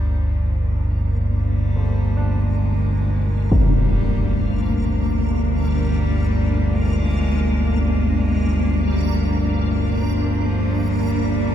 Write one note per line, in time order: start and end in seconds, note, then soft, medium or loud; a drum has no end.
0.00 11.55 G1 medium
0.00 11.55 D2 medium
0.00 11.55 A#2 medium
0.00 0.69 C3 medium
0.00 11.55 C3 medium
0.00 11.55 F3 medium
0.00 0.30 G3 medium
0.00 11.55 A#3 medium
0.00 11.55 D4 medium
0.00 11.55 A#4 medium
0.29 1.10 F3 medium
1.01 11.55 A#3 medium
1.36 2.43 G3 medium
1.76 8.20 F2 soft
2.17 8.62 D4 medium
2.42 3.51 G#3 loud
3.50 4.61 G3 medium
3.50 impact medium
4.59 5.40 F3 medium
5.66 6.77 G3 loud
6.75 7.82 G#3 loud
7.83 8.93 G#3 loud
8.91 9.72 G3 medium
9.99 11.08 F3 medium
11.07 11.55 G3 medium